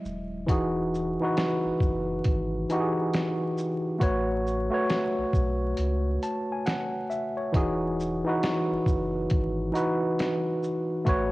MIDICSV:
0, 0, Header, 1, 4, 480
1, 0, Start_track
1, 0, Key_signature, 4, "major"
1, 0, Tempo, 882353
1, 260, Time_signature, 4, 2, 24, 8
1, 6157, End_track
2, 0, Start_track
2, 0, Title_t, "Tine electric piano"
2, 0, Program_c, 0, 4
2, 0, Control_c, 0, 64, 127
2, 0, Note_on_c, 0, 54, 59
2, 0, Note_on_c, 0, 56, 54
2, 0, Note_on_c, 0, 64, 64
2, 0, Note_on_c, 0, 75, 61
2, 0, Note_on_c, 0, 76, 78
2, 252, Note_on_c, 0, 52, 88
2, 261, Note_on_c, 0, 63, 79
2, 267, Note_off_c, 0, 56, 0
2, 267, Control_c, 0, 64, 0
2, 269, Note_off_c, 0, 75, 0
2, 269, Note_off_c, 0, 76, 0
2, 269, Note_on_c, 0, 66, 82
2, 270, Note_off_c, 0, 64, 0
2, 271, Note_off_c, 0, 54, 0
2, 276, Note_on_c, 0, 68, 89
2, 360, Control_c, 0, 64, 127
2, 532, Note_off_c, 0, 52, 0
2, 536, Note_off_c, 0, 63, 0
2, 540, Note_off_c, 0, 66, 0
2, 543, Note_off_c, 0, 68, 0
2, 654, Note_on_c, 0, 52, 76
2, 662, Note_on_c, 0, 63, 74
2, 669, Note_on_c, 0, 66, 74
2, 677, Note_on_c, 0, 71, 87
2, 1252, Note_off_c, 0, 52, 0
2, 1255, Note_off_c, 0, 63, 0
2, 1259, Note_off_c, 0, 66, 0
2, 1263, Note_off_c, 0, 71, 0
2, 1465, Note_on_c, 0, 52, 87
2, 1473, Note_on_c, 0, 63, 77
2, 1481, Note_on_c, 0, 66, 77
2, 1489, Note_on_c, 0, 67, 72
2, 1520, Note_off_c, 0, 67, 0
2, 1525, Note_on_c, 0, 68, 88
2, 2013, Note_off_c, 0, 52, 0
2, 2017, Note_off_c, 0, 63, 0
2, 2021, Note_off_c, 0, 66, 0
2, 2043, Note_off_c, 0, 68, 0
2, 2169, Note_on_c, 0, 57, 81
2, 2175, Note_on_c, 0, 66, 74
2, 2183, Note_on_c, 0, 71, 81
2, 2187, Control_c, 0, 64, 0
2, 2192, Note_on_c, 0, 73, 97
2, 2290, Control_c, 0, 64, 127
2, 2450, Note_off_c, 0, 57, 0
2, 2453, Note_off_c, 0, 66, 0
2, 2457, Note_off_c, 0, 71, 0
2, 2461, Note_off_c, 0, 73, 0
2, 2558, Note_on_c, 0, 57, 91
2, 2565, Note_on_c, 0, 66, 69
2, 2573, Note_on_c, 0, 71, 67
2, 2579, Note_on_c, 0, 73, 89
2, 3163, Note_off_c, 0, 57, 0
2, 3167, Note_off_c, 0, 66, 0
2, 3171, Note_off_c, 0, 71, 0
2, 3174, Note_off_c, 0, 73, 0
2, 3388, Note_on_c, 0, 81, 62
2, 3530, Note_off_c, 0, 81, 0
2, 3548, Note_on_c, 0, 80, 67
2, 3622, Note_on_c, 0, 78, 76
2, 3623, Note_off_c, 0, 80, 0
2, 3849, Note_off_c, 0, 78, 0
2, 3861, Note_on_c, 0, 76, 67
2, 4006, Note_off_c, 0, 76, 0
2, 4010, Note_on_c, 0, 73, 63
2, 4092, Note_on_c, 0, 52, 84
2, 4100, Note_on_c, 0, 63, 77
2, 4107, Control_c, 0, 64, 0
2, 4108, Note_on_c, 0, 66, 78
2, 4115, Note_on_c, 0, 68, 102
2, 4216, Control_c, 0, 64, 127
2, 4240, Note_off_c, 0, 73, 0
2, 4372, Note_off_c, 0, 52, 0
2, 4375, Note_off_c, 0, 63, 0
2, 4379, Note_off_c, 0, 66, 0
2, 4383, Note_off_c, 0, 68, 0
2, 4486, Note_on_c, 0, 52, 83
2, 4495, Note_on_c, 0, 63, 78
2, 4501, Note_on_c, 0, 66, 75
2, 4509, Note_on_c, 0, 71, 91
2, 5088, Note_off_c, 0, 52, 0
2, 5092, Note_off_c, 0, 63, 0
2, 5095, Note_off_c, 0, 66, 0
2, 5099, Note_off_c, 0, 71, 0
2, 5288, Note_on_c, 0, 52, 76
2, 5295, Note_on_c, 0, 63, 79
2, 5304, Note_on_c, 0, 66, 77
2, 5312, Note_on_c, 0, 71, 91
2, 5845, Note_off_c, 0, 52, 0
2, 5848, Note_off_c, 0, 63, 0
2, 5853, Note_off_c, 0, 66, 0
2, 5856, Note_off_c, 0, 71, 0
2, 6010, Note_on_c, 0, 57, 95
2, 6017, Note_on_c, 0, 66, 80
2, 6026, Note_on_c, 0, 71, 81
2, 6028, Control_c, 0, 64, 0
2, 6033, Note_on_c, 0, 73, 100
2, 6112, Control_c, 0, 64, 127
2, 6157, Note_off_c, 0, 57, 0
2, 6157, Note_off_c, 0, 66, 0
2, 6157, Note_off_c, 0, 71, 0
2, 6157, Note_off_c, 0, 73, 0
2, 6157, End_track
3, 0, Start_track
3, 0, Title_t, "Sub bass"
3, 0, Program_c, 1, 38
3, 23, Note_on_c, 1, 27, 78
3, 240, Note_off_c, 1, 27, 0
3, 264, Note_on_c, 1, 28, 121
3, 633, Note_off_c, 1, 28, 0
3, 895, Note_on_c, 1, 30, 48
3, 929, Note_off_c, 1, 30, 0
3, 982, Note_on_c, 1, 30, 91
3, 1200, Note_off_c, 1, 30, 0
3, 1227, Note_on_c, 1, 32, 86
3, 1443, Note_off_c, 1, 32, 0
3, 2183, Note_on_c, 1, 33, 109
3, 2553, Note_off_c, 1, 33, 0
3, 2816, Note_on_c, 1, 35, 47
3, 2850, Note_off_c, 1, 35, 0
3, 2903, Note_on_c, 1, 35, 97
3, 3121, Note_off_c, 1, 35, 0
3, 3144, Note_on_c, 1, 37, 90
3, 3361, Note_off_c, 1, 37, 0
3, 4104, Note_on_c, 1, 28, 122
3, 4473, Note_off_c, 1, 28, 0
3, 4738, Note_on_c, 1, 30, 46
3, 4772, Note_off_c, 1, 30, 0
3, 4821, Note_on_c, 1, 30, 100
3, 5040, Note_off_c, 1, 30, 0
3, 5067, Note_on_c, 1, 32, 101
3, 5283, Note_off_c, 1, 32, 0
3, 6020, Note_on_c, 1, 33, 106
3, 6157, Note_off_c, 1, 33, 0
3, 6157, End_track
4, 0, Start_track
4, 0, Title_t, "Drums"
4, 27, Note_on_c, 9, 82, 41
4, 81, Note_off_c, 9, 82, 0
4, 263, Note_on_c, 9, 36, 101
4, 266, Note_on_c, 9, 42, 86
4, 317, Note_off_c, 9, 36, 0
4, 320, Note_off_c, 9, 42, 0
4, 514, Note_on_c, 9, 82, 50
4, 568, Note_off_c, 9, 82, 0
4, 745, Note_on_c, 9, 42, 66
4, 749, Note_on_c, 9, 38, 102
4, 800, Note_off_c, 9, 42, 0
4, 803, Note_off_c, 9, 38, 0
4, 982, Note_on_c, 9, 36, 81
4, 989, Note_on_c, 9, 82, 48
4, 1036, Note_off_c, 9, 36, 0
4, 1043, Note_off_c, 9, 82, 0
4, 1221, Note_on_c, 9, 42, 71
4, 1226, Note_on_c, 9, 36, 87
4, 1275, Note_off_c, 9, 42, 0
4, 1281, Note_off_c, 9, 36, 0
4, 1468, Note_on_c, 9, 42, 47
4, 1468, Note_on_c, 9, 82, 44
4, 1522, Note_off_c, 9, 42, 0
4, 1522, Note_off_c, 9, 82, 0
4, 1706, Note_on_c, 9, 42, 67
4, 1711, Note_on_c, 9, 38, 106
4, 1761, Note_off_c, 9, 42, 0
4, 1766, Note_off_c, 9, 38, 0
4, 1947, Note_on_c, 9, 82, 46
4, 2001, Note_off_c, 9, 82, 0
4, 2182, Note_on_c, 9, 36, 108
4, 2183, Note_on_c, 9, 42, 81
4, 2237, Note_off_c, 9, 36, 0
4, 2238, Note_off_c, 9, 42, 0
4, 2432, Note_on_c, 9, 82, 43
4, 2486, Note_off_c, 9, 82, 0
4, 2664, Note_on_c, 9, 42, 64
4, 2667, Note_on_c, 9, 38, 93
4, 2718, Note_off_c, 9, 42, 0
4, 2722, Note_off_c, 9, 38, 0
4, 2902, Note_on_c, 9, 36, 87
4, 2908, Note_on_c, 9, 82, 45
4, 2956, Note_off_c, 9, 36, 0
4, 2962, Note_off_c, 9, 82, 0
4, 3139, Note_on_c, 9, 42, 79
4, 3194, Note_off_c, 9, 42, 0
4, 3387, Note_on_c, 9, 42, 42
4, 3387, Note_on_c, 9, 82, 40
4, 3442, Note_off_c, 9, 42, 0
4, 3442, Note_off_c, 9, 82, 0
4, 3625, Note_on_c, 9, 42, 75
4, 3630, Note_on_c, 9, 38, 113
4, 3680, Note_off_c, 9, 42, 0
4, 3685, Note_off_c, 9, 38, 0
4, 3867, Note_on_c, 9, 82, 42
4, 3921, Note_off_c, 9, 82, 0
4, 4102, Note_on_c, 9, 36, 115
4, 4103, Note_on_c, 9, 42, 85
4, 4157, Note_off_c, 9, 36, 0
4, 4158, Note_off_c, 9, 42, 0
4, 4352, Note_on_c, 9, 82, 46
4, 4406, Note_off_c, 9, 82, 0
4, 4586, Note_on_c, 9, 42, 67
4, 4589, Note_on_c, 9, 38, 112
4, 4640, Note_off_c, 9, 42, 0
4, 4644, Note_off_c, 9, 38, 0
4, 4821, Note_on_c, 9, 36, 92
4, 4827, Note_on_c, 9, 82, 48
4, 4875, Note_off_c, 9, 36, 0
4, 4882, Note_off_c, 9, 82, 0
4, 5058, Note_on_c, 9, 42, 74
4, 5065, Note_on_c, 9, 36, 90
4, 5112, Note_off_c, 9, 42, 0
4, 5120, Note_off_c, 9, 36, 0
4, 5305, Note_on_c, 9, 42, 46
4, 5305, Note_on_c, 9, 82, 42
4, 5360, Note_off_c, 9, 42, 0
4, 5360, Note_off_c, 9, 82, 0
4, 5544, Note_on_c, 9, 42, 66
4, 5550, Note_on_c, 9, 38, 105
4, 5599, Note_off_c, 9, 42, 0
4, 5604, Note_off_c, 9, 38, 0
4, 5784, Note_on_c, 9, 82, 45
4, 5839, Note_off_c, 9, 82, 0
4, 6020, Note_on_c, 9, 36, 112
4, 6020, Note_on_c, 9, 42, 80
4, 6074, Note_off_c, 9, 36, 0
4, 6074, Note_off_c, 9, 42, 0
4, 6157, End_track
0, 0, End_of_file